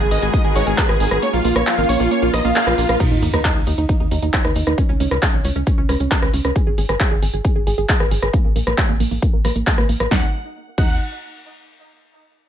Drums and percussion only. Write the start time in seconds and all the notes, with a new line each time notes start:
0.11 open hi-hat, cabasa
0.21 closed hi-hat, cabasa
0.33 kick, closed hi-hat, cabasa
0.55 open hi-hat, cabasa
0.66 closed hi-hat, cabasa
0.78 kick, clap, closed hi-hat, cabasa
0.89 cross-stick
1.00 open hi-hat, cabasa
1.11 cross-stick, closed hi-hat, cabasa
1.22 closed hi-hat, cabasa
1.33 cabasa
1.45 open hi-hat, cabasa
1.56 cross-stick, closed hi-hat, cabasa
1.67 clap, closed hi-hat, cabasa
1.78 cabasa
1.89 open hi-hat, cabasa
2.00 open hi-hat, cabasa
2.11 closed hi-hat, cabasa
2.22 cabasa
2.34 cross-stick, open hi-hat, cabasa
2.45 closed hi-hat, cabasa
2.56 clap, closed hi-hat, cabasa
2.67 cross-stick
2.78 open hi-hat, cabasa
2.89 cross-stick, closed hi-hat, cabasa
3.00 kick, closed hi-hat, crash, cabasa
3.11 cabasa
3.22 open hi-hat, cabasa
3.34 cross-stick, closed hi-hat, cabasa
3.45 kick, clap, closed hi-hat, cabasa
3.56 cabasa
3.66 open hi-hat, cabasa
3.78 closed hi-hat, cabasa
3.89 kick, closed hi-hat, cabasa
4.11 open hi-hat, cabasa
4.22 closed hi-hat, cabasa
4.33 kick, clap, closed hi-hat, cabasa
4.45 cross-stick
4.55 open hi-hat, cabasa
4.67 cross-stick, closed hi-hat, cabasa
4.78 kick, closed hi-hat, cabasa
4.89 cabasa
5.00 open hi-hat, cabasa
5.11 cross-stick, closed hi-hat, cabasa
5.22 kick, clap, closed hi-hat, cabasa
5.34 cabasa
5.44 open hi-hat, cabasa
5.56 closed hi-hat, cabasa
5.66 kick, closed hi-hat, cabasa
5.89 cross-stick, open hi-hat, cabasa
6.00 closed hi-hat, cabasa
6.11 kick, clap, closed hi-hat, cabasa
6.22 cross-stick
6.33 open hi-hat, cabasa
6.45 cross-stick, closed hi-hat, cabasa
6.56 kick, closed hi-hat
6.78 open hi-hat
6.89 cross-stick, closed hi-hat
7.00 kick, clap, closed hi-hat
7.22 open hi-hat
7.34 closed hi-hat
7.45 kick, closed hi-hat
7.67 open hi-hat
7.78 closed hi-hat
7.89 kick, clap, closed hi-hat
8.00 cross-stick
8.11 open hi-hat
8.22 cross-stick, closed hi-hat
8.34 kick, closed hi-hat
8.56 open hi-hat
8.67 cross-stick, closed hi-hat
8.78 kick, clap, closed hi-hat
9.00 open hi-hat
9.11 open hi-hat
9.22 kick, closed hi-hat
9.45 cross-stick, open hi-hat
9.56 closed hi-hat
9.67 kick, clap, closed hi-hat
9.78 cross-stick
9.89 open hi-hat
10.00 cross-stick, closed hi-hat
10.11 kick, snare
10.78 kick, crash